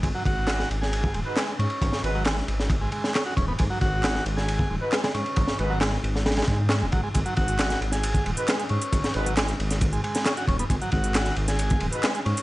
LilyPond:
<<
  \new Staff \with { instrumentName = "Brass ensemble" } { \time 4/4 \key gis \minor \tempo 4 = 135 r2 r8. <gis dis' fis' b'>16 r4 | r8 <gis dis' fis' b'>16 r2. r16 | r2 r8. <gis dis' fis' b'>16 r4 | r8 <gis dis' fis' b'>16 r2. r16 |
r2 r8. <gis dis' fis' b'>16 r4 | r8 <gis dis' fis' b'>16 r2. r16 | r2 r8. <gis dis' fis' b'>16 r4 | }
  \new Staff \with { instrumentName = "Transistor combo organ" } { \clef bass \time 4/4 \key gis \minor gis16 fis16 fis'4 r16 gis'8. gis16 r16 gis16 gis16 cis'8~ | cis'8 r16 fis16 gis16 r4 gis16 gis8 cis'16 fis'16 cis'16 b16 | gis16 fis16 fis'4 r16 gis'8. gis16 r16 gis16 gis16 cis'8~ | cis'8 r16 fis16 gis16 r4 gis16 gis16 r16 cis'16 gis16 fis16 gis16 |
gis16 fis16 fis'4 r16 gis'8. gis16 r16 gis16 gis16 cis'8~ | cis'8 r16 fis16 gis16 r4 gis16 gis8 cis'16 fis'16 cis'16 b16 | gis16 fis16 fis'4 r16 gis'8. gis16 r16 gis16 gis16 cis'8 | }
  \new Staff \with { instrumentName = "Detuned saw bass" } { \clef bass \time 4/4 \key gis \minor gis,,16 r16 gis,,8. r16 gis,,8. r16 dis,,16 r8. gis,16 r16 | gis,,16 r16 gis,,8. r16 gis,,8. r4 r16 dis,,16 r16 | gis,,16 r16 gis,,8. r16 gis,,8. r16 dis,,16 r8. gis,16 r16 | gis,,16 r16 gis,,8. r16 gis,,8. r16 gis,8. dis,,16 gis,,16 r16 |
gis,,16 r16 gis,,8. r16 gis,,8. r16 dis,,16 r8. gis,16 r16 | gis,,16 r16 gis,,8. r16 gis,,8. r4 r16 dis,,16 r16 | gis,,16 r16 gis,,8. r16 gis,,8. r16 dis,,16 r8. gis,16 r16 | }
  \new DrumStaff \with { instrumentName = "Drums" } \drummode { \time 4/4 <bd cymr>8 <bd cymr>8 <hc cymr sn>16 sn16 cymr16 sn16 cymr16 bd16 cymr8 <hc cymr sn>8 cymr16 cymr16 | <bd cymr>16 sn16 cymr8 <hc cymr sn>16 sn16 cymr16 sn16 <bd cymr>8 cymr16 sn16 <hc cymr sn>8 <bd cymr>8 | <bd cymr>8 <bd cymr>8 <hc cymr sn>16 sn16 cymr16 sn16 cymr16 bd8. <hc cymr sn>16 <cymr sn>16 cymr16 cymr16 | <bd cymr>16 sn16 cymr8 <hc cymr sn>16 sn16 cymr16 sn16 <cymr sn>32 <cymr sn>32 <cymr sn>32 <cymr sn>32 <bd cymr>8 <hc cymr sn>8 <bd cymr>8 |
<hh bd cymr>16 hh16 <bd cymr>16 hh16 <hc hh cymr sn>16 <hh sn>16 cymr16 <hh sn>16 <hh cymr>16 <hh bd>16 cymr16 hh16 <hc hh cymr sn>16 hh16 cymr16 <hh cymr>16 | <hh bd cymr>16 <hh sn>16 cymr16 hh16 <hc hh cymr sn>16 <hh sn>16 cymr16 <hh sn>16 <hh bd cymr>16 hh16 cymr16 <hh sn>16 <hc hh cymr sn>16 hh16 <bd cymr>16 hh16 | <hh bd cymr>16 hh16 <bd cymr>16 hh16 <hc hh cymr sn>16 <hh sn>16 cymr16 <hh sn>16 <hh cymr>16 <hh bd>16 cymr16 hh16 <hc hh cymr sn>16 hh16 cymr16 <hh cymr>16 | }
>>